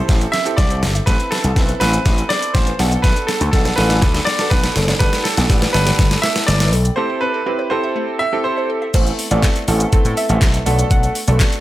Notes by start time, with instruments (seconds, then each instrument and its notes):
Already playing: grand piano C4 E4 G4 A4 C5
0.09 slap bass A1, synth arpeggio sound A3, kick, snare, closed hi-hat, shaker
0.21 closed hi-hat, shaker
0.32 synth arpeggio sound C4, grand piano E5, snare, open hi-hat, shaker
0.45 grand piano C4 E4 G4 A4, closed hi-hat, shaker
0.57 slap bass C2, synth arpeggio sound E4, grand piano D5, kick, snare, closed hi-hat, shaker
0.70 synth arpeggio sound C5, closed hi-hat, shaker
0.83 slap bass G1, synth arpeggio sound A4, snare, open hi-hat, shaker
0.95 synth arpeggio sound E5, closed hi-hat, shaker
1.06 slap bass A1, synth arpeggio sound A3, grand piano C4 E4 A4 B4, kick, snare, closed hi-hat, shaker
1.20 synth arpeggio sound C4, closed hi-hat, shaker
1.31 synth arpeggio sound B3, grand piano A4, snare, open hi-hat, shaker
1.44 slap bass C2, synth arpeggio sound A4, closed hi-hat, shaker
1.56 slap bass B1, grand piano C4 E4 A4 B4, synth arpeggio sound C4, kick, snare, closed hi-hat, shaker
1.69 synth arpeggio sound B4, closed hi-hat, shaker
1.80 slap bass A1, grand piano C4 E4 A4 B4, synth arpeggio sound A4, snare, open hi-hat, shaker
1.93 synth arpeggio sound C5, closed hi-hat, shaker
2.06 slap bass A1, synth arpeggio sound A3, kick, snare, closed hi-hat, shaker
2.18 closed hi-hat, shaker
2.29 synth arpeggio sound B3, grand piano D5, snare, open hi-hat, shaker
2.42 closed hi-hat, shaker
2.54 slap bass A1, synth arpeggio sound C4, grand piano C5, kick, snare, closed hi-hat, shaker
2.67 synth arpeggio sound B4, closed hi-hat, shaker
2.79 slap bass B1, grand piano B3 D4 F#4 A4, synth arpeggio sound A4, snare, open hi-hat, shaker
2.92 synth arpeggio sound D5, closed hi-hat, shaker
3.02 slap bass B1, synth arpeggio sound A3, grand piano B4, kick, snare, closed hi-hat, shaker
3.16 synth arpeggio sound D4, closed hi-hat, shaker
3.27 synth arpeggio sound B3, grand piano A4, snare, open hi-hat, shaker
3.41 slap bass D2, synth arpeggio sound A4, closed hi-hat, shaker
3.51 slap bass B1, grand piano B3 D4 F#4 A4, synth arpeggio sound D4, kick, snare, closed hi-hat, shaker
3.65 synth arpeggio sound B4, snare, closed hi-hat, shaker
3.76 slap bass A1, grand piano B3 D4 F#4 A4 B4, synth arpeggio sound A4, snare, open hi-hat, shaker
3.90 synth arpeggio sound D5, snare, closed hi-hat, shaker
4.02 slap bass D2, synth arpeggio sound A3, kick, snare, closed hi-hat, shaker
4.15 snare, closed hi-hat, shaker
4.25 synth arpeggio sound B3, grand piano D5, snare, open hi-hat, shaker
4.39 grand piano B3 D4 F#4 A4, snare, closed hi-hat, shaker
4.50 slap bass B1, synth arpeggio sound D4, grand piano B4, kick, snare, closed hi-hat, shaker
4.64 synth arpeggio sound B4, snare, closed hi-hat, shaker
4.76 slap bass F#1, synth arpeggio sound A4, snare, open hi-hat, shaker
4.88 synth arpeggio sound D5, snare, closed hi-hat, shaker
4.99 slap bass G1, synth arpeggio sound A3, grand piano B3 D4 G4 A4 B4, kick, snare, closed hi-hat, shaker
5.13 synth arpeggio sound G4, snare, closed hi-hat, shaker
5.24 synth arpeggio sound B3, grand piano A4, snare, open hi-hat, shaker
5.37 slap bass B1, synth arpeggio sound A4, snare, closed hi-hat, shaker
5.49 slap bass A1, grand piano B3 D4 G4 B4, synth arpeggio sound G4, kick, snare, closed hi-hat, shaker
5.62 synth arpeggio sound B4, snare, closed hi-hat, shaker
5.73 slap bass G1, grand piano B3 D4 G4 A4 B4, synth arpeggio sound A4, snare, open hi-hat, shaker
5.87 synth arpeggio sound G5, snare, closed hi-hat, shaker
5.99 slap bass G1, synth arpeggio sound A3, kick, snare, closed hi-hat, shaker
6.11 snare, closed hi-hat, shaker
6.22 synth arpeggio sound B3, grand piano E5, snare, open hi-hat, shaker
6.36 snare, closed hi-hat, shaker
6.47 slap bass G1, synth arpeggio sound G4, grand piano D5, snare, closed hi-hat, shaker
6.60 synth arpeggio sound B4, snare, closed hi-hat, shaker
6.73 slap bass B1, synth arpeggio sound A4, open hi-hat, shaker
6.85 synth arpeggio sound G5, closed hi-hat, shaker
6.96 synth arpeggio sound A3, grand piano C4 E4 G4 A4 C5
7.10 synth arpeggio sound E4
7.21 synth arpeggio sound C4, grand piano B4
7.34 synth arpeggio sound A4
7.46 grand piano C4 E4 G4 B4, synth arpeggio sound E4
7.59 synth arpeggio sound C5
7.70 grand piano C4 E4 G4 A4 C5, synth arpeggio sound A4
7.84 synth arpeggio sound E5
7.96 synth arpeggio sound A3
8.19 synth arpeggio sound C4, grand piano E5
8.32 grand piano C4 E4 G4 A4
8.44 synth arpeggio sound E4, grand piano C5
8.57 synth arpeggio sound C5
8.70 synth arpeggio sound A4
8.82 synth arpeggio sound E5
8.94 slap bass A1, grand piano A3 B3 C4 E4 A4, synth pluck C5, kick, closed hi-hat, crash, shaker
9.07 closed hi-hat, shaker
9.19 open hi-hat, shaker
9.31 slap bass A1, grand piano A3 B3 C4 E4 A4, synth pluck D5, closed hi-hat, shaker
9.43 kick, snare, clap, closed hi-hat, shaker
9.56 closed hi-hat, shaker
9.67 slap bass A1, grand piano A3 B3 C4 E4 A4, open hi-hat, shaker
9.80 closed hi-hat, shaker
9.92 grand piano A3 B3 C4 E4 A4, muted slap bass stroke, kick, closed hi-hat, shaker
10.05 slap bass A2, closed hi-hat, shaker
10.17 synth pluck E5, open hi-hat, shaker
10.29 slap bass A1, grand piano A3 B3 C4 E4 A4, closed hi-hat, shaker
10.42 kick, snare, clap, closed hi-hat, shaker
10.54 closed hi-hat, shaker
10.66 slap bass B1, grand piano A3 B3 D4 F#4 A4, open hi-hat, shaker
10.79 closed hi-hat, shaker
10.91 slap bass B1, synth pluck F#5, kick, closed hi-hat, shaker
11.03 closed hi-hat, shaker
11.15 open hi-hat, shaker
11.27 slap bass B1, grand piano A3 B3 D4 F#4 A4, synth pluck D5, closed hi-hat, shaker
11.40 kick, snare, clap, closed hi-hat, shaker
11.52 closed hi-hat, shaker